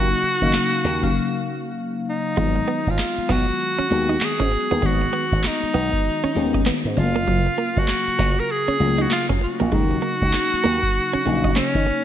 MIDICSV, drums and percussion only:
0, 0, Header, 1, 2, 480
1, 0, Start_track
1, 0, Tempo, 612245
1, 1863, Time_signature, 4, 2, 24, 8
1, 9442, End_track
2, 0, Start_track
2, 0, Title_t, "Drums"
2, 180, Note_on_c, 9, 42, 74
2, 258, Note_off_c, 9, 42, 0
2, 328, Note_on_c, 9, 36, 76
2, 328, Note_on_c, 9, 42, 52
2, 406, Note_off_c, 9, 36, 0
2, 406, Note_off_c, 9, 42, 0
2, 416, Note_on_c, 9, 39, 95
2, 419, Note_on_c, 9, 42, 74
2, 420, Note_on_c, 9, 38, 102
2, 494, Note_off_c, 9, 39, 0
2, 498, Note_off_c, 9, 38, 0
2, 498, Note_off_c, 9, 42, 0
2, 662, Note_on_c, 9, 42, 72
2, 663, Note_on_c, 9, 38, 59
2, 740, Note_off_c, 9, 42, 0
2, 741, Note_off_c, 9, 38, 0
2, 806, Note_on_c, 9, 42, 49
2, 807, Note_on_c, 9, 36, 83
2, 884, Note_off_c, 9, 42, 0
2, 886, Note_off_c, 9, 36, 0
2, 1858, Note_on_c, 9, 42, 64
2, 1861, Note_on_c, 9, 36, 100
2, 1936, Note_off_c, 9, 42, 0
2, 1939, Note_off_c, 9, 36, 0
2, 2103, Note_on_c, 9, 42, 72
2, 2181, Note_off_c, 9, 42, 0
2, 2250, Note_on_c, 9, 36, 85
2, 2251, Note_on_c, 9, 42, 52
2, 2329, Note_off_c, 9, 36, 0
2, 2329, Note_off_c, 9, 42, 0
2, 2341, Note_on_c, 9, 39, 95
2, 2344, Note_on_c, 9, 42, 67
2, 2345, Note_on_c, 9, 38, 107
2, 2420, Note_off_c, 9, 39, 0
2, 2422, Note_off_c, 9, 42, 0
2, 2423, Note_off_c, 9, 38, 0
2, 2583, Note_on_c, 9, 36, 98
2, 2586, Note_on_c, 9, 46, 72
2, 2587, Note_on_c, 9, 38, 62
2, 2662, Note_off_c, 9, 36, 0
2, 2665, Note_off_c, 9, 46, 0
2, 2666, Note_off_c, 9, 38, 0
2, 2732, Note_on_c, 9, 42, 49
2, 2811, Note_off_c, 9, 42, 0
2, 2825, Note_on_c, 9, 42, 73
2, 2903, Note_off_c, 9, 42, 0
2, 3064, Note_on_c, 9, 42, 84
2, 3142, Note_off_c, 9, 42, 0
2, 3208, Note_on_c, 9, 42, 55
2, 3287, Note_off_c, 9, 42, 0
2, 3299, Note_on_c, 9, 39, 87
2, 3301, Note_on_c, 9, 42, 81
2, 3302, Note_on_c, 9, 38, 113
2, 3306, Note_off_c, 9, 39, 0
2, 3306, Note_on_c, 9, 39, 86
2, 3380, Note_off_c, 9, 42, 0
2, 3381, Note_off_c, 9, 38, 0
2, 3385, Note_off_c, 9, 39, 0
2, 3451, Note_on_c, 9, 36, 95
2, 3529, Note_off_c, 9, 36, 0
2, 3544, Note_on_c, 9, 46, 77
2, 3623, Note_off_c, 9, 46, 0
2, 3690, Note_on_c, 9, 42, 48
2, 3769, Note_off_c, 9, 42, 0
2, 3782, Note_on_c, 9, 42, 67
2, 3783, Note_on_c, 9, 36, 104
2, 3861, Note_off_c, 9, 42, 0
2, 3862, Note_off_c, 9, 36, 0
2, 4027, Note_on_c, 9, 42, 69
2, 4106, Note_off_c, 9, 42, 0
2, 4171, Note_on_c, 9, 36, 86
2, 4173, Note_on_c, 9, 42, 54
2, 4250, Note_off_c, 9, 36, 0
2, 4252, Note_off_c, 9, 42, 0
2, 4261, Note_on_c, 9, 39, 93
2, 4264, Note_on_c, 9, 42, 70
2, 4265, Note_on_c, 9, 38, 113
2, 4339, Note_off_c, 9, 39, 0
2, 4343, Note_off_c, 9, 38, 0
2, 4343, Note_off_c, 9, 42, 0
2, 4507, Note_on_c, 9, 46, 72
2, 4586, Note_off_c, 9, 46, 0
2, 4650, Note_on_c, 9, 36, 89
2, 4652, Note_on_c, 9, 42, 48
2, 4728, Note_off_c, 9, 36, 0
2, 4731, Note_off_c, 9, 42, 0
2, 4744, Note_on_c, 9, 42, 75
2, 4822, Note_off_c, 9, 42, 0
2, 4983, Note_on_c, 9, 42, 80
2, 5062, Note_off_c, 9, 42, 0
2, 5128, Note_on_c, 9, 42, 58
2, 5129, Note_on_c, 9, 36, 105
2, 5207, Note_off_c, 9, 42, 0
2, 5208, Note_off_c, 9, 36, 0
2, 5219, Note_on_c, 9, 39, 93
2, 5222, Note_on_c, 9, 42, 88
2, 5223, Note_on_c, 9, 38, 117
2, 5226, Note_off_c, 9, 39, 0
2, 5226, Note_on_c, 9, 39, 87
2, 5301, Note_off_c, 9, 42, 0
2, 5302, Note_off_c, 9, 38, 0
2, 5304, Note_off_c, 9, 39, 0
2, 5461, Note_on_c, 9, 46, 79
2, 5539, Note_off_c, 9, 46, 0
2, 5609, Note_on_c, 9, 42, 51
2, 5687, Note_off_c, 9, 42, 0
2, 5701, Note_on_c, 9, 42, 68
2, 5702, Note_on_c, 9, 36, 98
2, 5779, Note_off_c, 9, 42, 0
2, 5781, Note_off_c, 9, 36, 0
2, 5944, Note_on_c, 9, 42, 74
2, 6022, Note_off_c, 9, 42, 0
2, 6090, Note_on_c, 9, 36, 90
2, 6090, Note_on_c, 9, 42, 52
2, 6168, Note_off_c, 9, 36, 0
2, 6169, Note_off_c, 9, 42, 0
2, 6178, Note_on_c, 9, 39, 92
2, 6181, Note_on_c, 9, 42, 79
2, 6182, Note_on_c, 9, 38, 113
2, 6183, Note_off_c, 9, 39, 0
2, 6183, Note_on_c, 9, 39, 94
2, 6259, Note_off_c, 9, 42, 0
2, 6260, Note_off_c, 9, 38, 0
2, 6261, Note_off_c, 9, 39, 0
2, 6421, Note_on_c, 9, 36, 103
2, 6422, Note_on_c, 9, 46, 72
2, 6423, Note_on_c, 9, 38, 64
2, 6499, Note_off_c, 9, 36, 0
2, 6500, Note_off_c, 9, 46, 0
2, 6501, Note_off_c, 9, 38, 0
2, 6568, Note_on_c, 9, 42, 52
2, 6646, Note_off_c, 9, 42, 0
2, 6661, Note_on_c, 9, 42, 71
2, 6740, Note_off_c, 9, 42, 0
2, 6903, Note_on_c, 9, 42, 78
2, 6982, Note_off_c, 9, 42, 0
2, 7049, Note_on_c, 9, 42, 60
2, 7127, Note_off_c, 9, 42, 0
2, 7140, Note_on_c, 9, 39, 90
2, 7141, Note_off_c, 9, 39, 0
2, 7141, Note_on_c, 9, 39, 90
2, 7143, Note_on_c, 9, 42, 86
2, 7144, Note_on_c, 9, 38, 123
2, 7219, Note_off_c, 9, 39, 0
2, 7222, Note_off_c, 9, 42, 0
2, 7223, Note_off_c, 9, 38, 0
2, 7290, Note_on_c, 9, 36, 97
2, 7368, Note_off_c, 9, 36, 0
2, 7382, Note_on_c, 9, 46, 74
2, 7461, Note_off_c, 9, 46, 0
2, 7531, Note_on_c, 9, 42, 52
2, 7610, Note_off_c, 9, 42, 0
2, 7622, Note_on_c, 9, 42, 70
2, 7623, Note_on_c, 9, 36, 111
2, 7701, Note_off_c, 9, 36, 0
2, 7701, Note_off_c, 9, 42, 0
2, 7863, Note_on_c, 9, 42, 71
2, 7941, Note_off_c, 9, 42, 0
2, 8010, Note_on_c, 9, 36, 80
2, 8011, Note_on_c, 9, 42, 49
2, 8089, Note_off_c, 9, 36, 0
2, 8089, Note_off_c, 9, 42, 0
2, 8099, Note_on_c, 9, 39, 90
2, 8100, Note_off_c, 9, 39, 0
2, 8100, Note_on_c, 9, 39, 89
2, 8103, Note_on_c, 9, 42, 76
2, 8104, Note_on_c, 9, 38, 115
2, 8179, Note_off_c, 9, 39, 0
2, 8182, Note_off_c, 9, 38, 0
2, 8182, Note_off_c, 9, 42, 0
2, 8346, Note_on_c, 9, 46, 73
2, 8425, Note_off_c, 9, 46, 0
2, 8491, Note_on_c, 9, 36, 94
2, 8494, Note_on_c, 9, 42, 49
2, 8570, Note_off_c, 9, 36, 0
2, 8572, Note_off_c, 9, 42, 0
2, 8586, Note_on_c, 9, 42, 81
2, 8664, Note_off_c, 9, 42, 0
2, 8825, Note_on_c, 9, 42, 80
2, 8903, Note_off_c, 9, 42, 0
2, 8971, Note_on_c, 9, 36, 102
2, 8971, Note_on_c, 9, 42, 60
2, 9049, Note_off_c, 9, 36, 0
2, 9049, Note_off_c, 9, 42, 0
2, 9062, Note_on_c, 9, 39, 89
2, 9064, Note_off_c, 9, 39, 0
2, 9064, Note_on_c, 9, 39, 86
2, 9065, Note_on_c, 9, 42, 85
2, 9066, Note_on_c, 9, 38, 115
2, 9142, Note_off_c, 9, 39, 0
2, 9143, Note_off_c, 9, 42, 0
2, 9144, Note_off_c, 9, 38, 0
2, 9211, Note_on_c, 9, 36, 96
2, 9289, Note_off_c, 9, 36, 0
2, 9306, Note_on_c, 9, 46, 80
2, 9384, Note_off_c, 9, 46, 0
2, 9442, End_track
0, 0, End_of_file